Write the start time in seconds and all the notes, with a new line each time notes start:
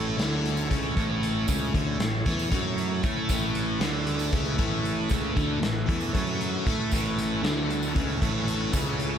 Already playing: A1 A2 A3 C#4 E4 A4 C#5
0.18 D2 D3, snare, closed hi-hat
0.45 closed hi-hat
0.57 tambourine
0.69 C#2 C#3, kick, closed hi-hat
0.83 tambourine
0.96 A1 A2, kick, closed hi-hat
1.23 closed hi-hat
1.48 C#2 C#3, kick, closed hi-hat, tambourine
1.74 D2 D3, kick, closed hi-hat
1.99 A1 A2, snare, closed hi-hat, tambourine
2.26 E2 E3, kick, snare, closed hi-hat, tambourine
2.39 tambourine
2.51 F#2 F#3, kick, closed hi-hat, tambourine
2.78 closed hi-hat
3.03 A2 A3, kick, closed hi-hat, tambourine
3.29 A1 A2 B4, kick, closed hi-hat, tambourine
3.55 closed hi-hat
3.81 D2 D3, snare, closed hi-hat
4.07 closed hi-hat
4.19 tambourine
4.32 C#2 C#3, kick, closed hi-hat
4.45 tambourine
4.58 A1 A2, kick, closed hi-hat
4.85 closed hi-hat
5.09 C#2 C#3, kick, closed hi-hat, tambourine
5.35 D2 D3, kick, closed hi-hat
5.61 A1 A2, snare, closed hi-hat
5.87 E2 E3, kick, closed hi-hat
6.00 tambourine
6.14 F#2 F#3, kick, closed hi-hat
6.27 tambourine
6.41 closed hi-hat
6.66 A2 A3, kick, closed hi-hat
6.91 A1 A2, kick, closed hi-hat, tambourine
7.18 closed hi-hat
7.43 D2 D3, snare, closed hi-hat
7.70 closed hi-hat
7.83 tambourine
7.95 C#2 C#3, kick, closed hi-hat
8.09 tambourine
8.21 A1 A2, kick, closed hi-hat
8.48 closed hi-hat
8.73 C#2 C#3, kick, closed hi-hat, tambourine
8.99 closed hi-hat